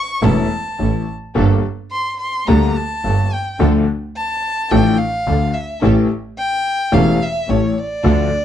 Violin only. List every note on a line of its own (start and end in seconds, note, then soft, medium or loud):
0.00 0.26 C#6 medium
0.24 1.09 A5 medium
1.92 2.18 C6 loud
2.20 2.49 C6 medium
2.47 2.78 A#5 medium
2.76 3.35 A5 medium
3.33 3.61 G5 medium
4.17 4.73 A5 loud
4.71 5.00 G5 medium
4.98 5.55 F5 medium
5.53 5.82 E5 medium
6.38 6.95 G5 loud
6.94 7.24 F5 medium
7.23 7.51 E5 medium
7.50 7.80 C#5 medium
7.79 8.45 D5 loud